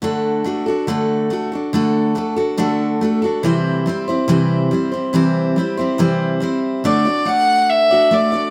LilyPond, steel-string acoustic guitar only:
\new Staff \with { instrumentName = "Steel-string acoustic guitar" } { \time 4/4 \key d \mixolydian \tempo 4 = 141 <d a d' fis' a'>4 <a d' fis' a'>8 <d' fis' a'>8 <d a d' fis' a'>4 <a d' fis' a'>8 <d' fis' a'>8 | <d a d' fis' a'>4 <a d' fis' a'>8 <d' fis' a'>8 <d a d' fis' a'>4 <a d' fis' a'>8 <d' fis' a'>8 | <c e g c' e' c''>4 <g c' e' c''>8 <g c' e' c''>8 <c e g c' e' c''>4 <g c' e' c''>8 <g c' e' c''>8 | <c e g c' e' c''>4 <g c' e' c''>8 <g c' e' c''>8 <c e g c' e' c''>4 <g c' e' c''>4 |
<d a d' fis' d''>8 <d' fis' d''>8 <a d' fis' d''>4. <d' fis' d''>8 <a d' fis' d''>8 <d' fis' d''>8 | }